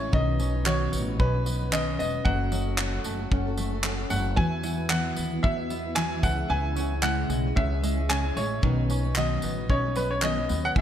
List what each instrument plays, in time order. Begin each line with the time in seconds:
Already playing: upright bass A1, five-string banjo E3 G#3 C#4 E4, steel-string acoustic guitar G#3 C#4 E4 G#4, reed electric piano C#4 G#4 E5, upright piano C#5
0.11 upright bass B1, steel-string acoustic guitar B2 D#3 F#3 C#4 D#4 B4, five-string banjo D#3, reed electric piano C#4 B4 D#5, upright piano D#5, kick
0.39 steel-string acoustic guitar F#3 C#4 D#4 B4, five-string banjo C#4, tambourine
0.53 steel-string acoustic guitar F#3 C#4 D#4 B4
0.65 steel-string acoustic guitar B2 D#3 F#3 C#4 D#4 B4, five-string banjo F#4, upright piano C#5, clap
0.92 upright bass A1, five-string banjo B3, tambourine
1.07 steel-string acoustic guitar F#3 C#4 D#4 B4
1.18 upright bass B1, steel-string acoustic guitar F#3 C#4 D#4 B4, reed electric piano C#4 B4 D#5, five-string banjo C#4, upright piano B4, kick
1.33 steel-string acoustic guitar F#3 C#4 D#4 B4
1.45 steel-string acoustic guitar F#3 C#4 D#4 B4, five-string banjo B3, tambourine
1.59 steel-string acoustic guitar F#3 C#4 D#4 B4
1.71 steel-string acoustic guitar B2 D#3 F#3 C#4 D#4 B4, reed electric piano C#4 B4 D#5, five-string banjo C#4, upright piano D#5, clap
1.98 upright bass E1, steel-string acoustic guitar F#3 C#4 D#4 B4, five-string banjo B3, upright piano D#5, tambourine
2.25 upright bass F#1, steel-string acoustic guitar F#3 C#4 F#4 A4, five-string banjo F#3, reed electric piano C#4 G#4 F#5, upright piano F#5, kick
2.33 reed electric piano A4
2.51 steel-string acoustic guitar F#3 C#4 F#4 A4, five-string banjo C#4, tambourine
2.66 steel-string acoustic guitar C#4 F#4 A4
2.78 steel-string acoustic guitar F#3 C#4 F#4 A4, five-string banjo F#4, clap
3.04 upright bass F#1, five-string banjo A3, tambourine
3.19 steel-string acoustic guitar C#4 F#4 A4
3.31 upright bass F#1, steel-string acoustic guitar F#3 C#4 F#4 A4, reed electric piano C#4 A4 F#5, five-string banjo C#4, kick
3.46 steel-string acoustic guitar C#4 F#4 A4
3.57 steel-string acoustic guitar F#3 C#4 F#4 A4, five-string banjo A3, tambourine
3.72 steel-string acoustic guitar C#4 F#4 A4
3.83 steel-string acoustic guitar F#3 C#4 F#4 A4, reed electric piano C#4 A4 F#5, five-string banjo C#4, clap
3.98 steel-string acoustic guitar C#4 F#4 A4
4.10 upright bass F#1, steel-string acoustic guitar F#3 C#4 F#4 A4, five-string banjo A3, upright piano F#5, tambourine
4.36 upright bass E2, five-string banjo E3, steel-string acoustic guitar E3 F#3 B3 E4 B4, reed electric piano B3 F#4 E5, upright piano G#5, kick
4.63 steel-string acoustic guitar F#3 B3 E4 B4, five-string banjo E4, tambourine
4.78 steel-string acoustic guitar B3 E4 B4
4.89 steel-string acoustic guitar E3 F#3 B3 B4, five-string banjo F#4, upright piano F#5, clap
5.16 upright bass D#2, five-string banjo B3, tambourine
5.31 steel-string acoustic guitar B3 E4 B4
5.42 upright bass E2, steel-string acoustic guitar F#3 B3 E4 B4, reed electric piano B3 F#4 D#5, five-string banjo E4, upright piano E5, kick
5.52 reed electric piano E5
5.57 steel-string acoustic guitar B3 E4 B4
5.69 steel-string acoustic guitar F#3 B3 E4 B4, five-string banjo B3, tambourine
5.83 steel-string acoustic guitar B3 E4 B4
5.95 steel-string acoustic guitar E3 F#3 B3 E4 B4, reed electric piano B3 F#4 E5, five-string banjo E4, upright piano G#5, clap
6.11 steel-string acoustic guitar B3 E4 B4
6.23 upright bass C#2, five-string banjo E3, steel-string acoustic guitar G#3 C#4 E4 G#4, reed electric piano C#4 G#4 E5, upright piano F#5, kick, tambourine
6.50 upright bass C#2, steel-string acoustic guitar C#3 G#3 C#4 E4 G#4, five-string banjo E3, upright piano G#5
6.76 steel-string acoustic guitar G#3 C#4 E4 G#4, five-string banjo C#4, tambourine
6.91 steel-string acoustic guitar C#4 E4 G#4
7.02 steel-string acoustic guitar C#3 G#3 C#4 E4 G#4, five-string banjo E4, upright piano F#5, clap
7.29 upright bass B1, five-string banjo G#3, tambourine
7.44 steel-string acoustic guitar C#4 E4 G#4
7.54 upright bass C#2, steel-string acoustic guitar G#3 C#4 E4 G#4, reed electric piano C#4 G#4 E5, five-string banjo C#4, upright piano E5, kick
7.70 steel-string acoustic guitar C#4 E4 G#4
7.82 steel-string acoustic guitar G#3 C#4 E4 G#4, five-string banjo G#3, tambourine
7.97 steel-string acoustic guitar C#4 E4 G#4
8.08 steel-string acoustic guitar C#3 G#3 C#4 E4 G#4, reed electric piano C#4 G#4 E5, five-string banjo C#4, upright piano G#5, clap
8.23 steel-string acoustic guitar C#4 E4 G#4
8.34 upright bass A1, steel-string acoustic guitar G#3 C#4 E4 G#4, five-string banjo G#3, upright piano C#5, tambourine
8.61 upright bass B1, steel-string acoustic guitar B2 D#3 F#3 C#4 D#4 B4, five-string banjo D#3, reed electric piano C#4 B4 D#5, kick
8.88 steel-string acoustic guitar F#3 C#4 D#4 B4, five-string banjo C#4, tambourine
9.03 steel-string acoustic guitar F#3 C#4 D#4 B4
9.16 steel-string acoustic guitar B2 D#3 F#3 C#4 D#4 B4, five-string banjo F#4, upright piano D#5, clap
9.42 upright bass A1, five-string banjo B3, tambourine
9.56 steel-string acoustic guitar F#3 C#4 D#4 B4
9.68 upright bass B1, steel-string acoustic guitar F#3 C#4 D#4 B4, reed electric piano C#4 B4 D#5, five-string banjo C#4, upright piano C#5, kick
9.83 steel-string acoustic guitar F#3 C#4 D#4 B4
9.95 steel-string acoustic guitar F#3 C#4 D#4 B4, five-string banjo B3, upright piano B4, tambourine
10.10 steel-string acoustic guitar F#3 C#4 D#4 B4, upright piano C#5
10.22 steel-string acoustic guitar B2 D#3 F#3 C#4 D#4 B4, reed electric piano C#4 B4 D#5, five-string banjo C#4, upright piano D#5, clap
10.36 steel-string acoustic guitar F#3 C#4 D#4 B4
10.48 upright bass D#2, steel-string acoustic guitar F#3 C#4 D#4 B4, five-string banjo B3, tambourine
10.65 upright piano F#5
10.75 upright bass E2, steel-string acoustic guitar E3 G#3 B3 E4 B4, five-string banjo E3, reed electric piano B3 G#4 E5, kick